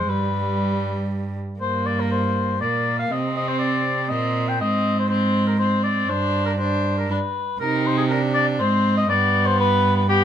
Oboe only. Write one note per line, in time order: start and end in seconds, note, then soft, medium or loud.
0.00 0.11 C5 medium
0.09 1.10 B4 medium
1.61 1.88 C5 medium
1.86 2.01 D5 medium
1.99 2.11 A#4 medium
2.11 2.60 C5 medium
2.61 2.98 D5 medium
2.99 3.13 F5 medium
3.12 3.36 D#5 medium
3.37 3.50 D#5 medium
3.48 3.58 C5 medium
3.59 4.11 D5 medium
4.09 4.50 D#5 medium
4.49 4.60 G5 medium
4.61 4.97 D#5 medium
4.99 5.09 C5 medium
5.09 5.46 C5 medium
5.47 5.58 A#4 medium
5.59 5.83 C5 medium
5.84 6.11 D5 medium
6.10 6.45 C5 medium
6.46 6.52 A#4 medium
6.58 6.95 C5 medium
6.98 7.12 A#4 medium
7.10 7.59 B4 medium
7.60 7.88 A#4 medium
7.86 7.97 C5 medium
7.97 8.03 G#4 medium
8.09 8.21 A#4 medium
8.34 8.46 D5 medium
8.59 8.96 C5 medium
8.97 9.09 D#5 loud
9.09 9.47 D5 loud
9.46 9.59 C5 medium
9.59 9.96 B4 loud
9.97 10.08 B4 medium
10.09 10.24 G4 loud